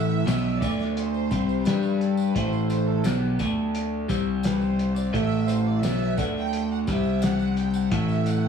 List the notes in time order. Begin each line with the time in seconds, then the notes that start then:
Already playing: A1 A2 E3 A3 E5
0.26 B1 B2 F#3 B3, snare, closed hi-hat, tambourine
0.58 D2 D3 A3 D5, kick
0.62 D4, closed hi-hat, tambourine
0.80 snare, tambourine
0.94 C5, closed hi-hat
1.14 tambourine
1.31 C2 C3 G3 C4, kick, closed hi-hat, tambourine
1.49 tambourine
1.64 G2 G3 D4 B4, snare, closed hi-hat, tambourine
1.68 G4
1.83 tambourine
1.99 A4, closed hi-hat
2.17 B4, tambourine
2.35 A1 A2 E3 A3 C5, kick, closed hi-hat
2.53 tambourine
2.69 C5, closed hi-hat, tambourine
2.88 A4
3.04 B1 B2 F#3 B3 G4, snare, closed hi-hat, tambourine
3.39 D2 D3 A3 D4, kick, closed hi-hat, tambourine
3.75 closed hi-hat
4.08 C2 C3 G3 C4, kick, closed hi-hat, tambourine
4.43 B4, snare, closed hi-hat, tambourine
4.61 C5, tambourine
4.79 closed hi-hat, tambourine
4.96 D5, tambourine
5.13 A1 A2 E3 A3 E5, kick, closed hi-hat
5.31 tambourine
5.48 C5, closed hi-hat, tambourine
5.67 D5
5.82 B1 B2 F#3 B3 E5, snare, closed hi-hat, tambourine
6.17 D2 D3 A3 D4 F#5, kick, closed hi-hat, tambourine
6.38 G5
6.53 closed hi-hat
6.72 F#5
6.87 C2 C3 G3 C4 E5, kick, closed hi-hat, tambourine
7.05 tambourine
7.22 F#5, snare, closed hi-hat, tambourine
7.39 tambourine
7.56 G5, closed hi-hat, tambourine
7.74 F#5, tambourine
7.91 A1 A2 E3 A3 E5, kick, closed hi-hat
8.09 tambourine
8.26 F#5, closed hi-hat, tambourine
8.44 G5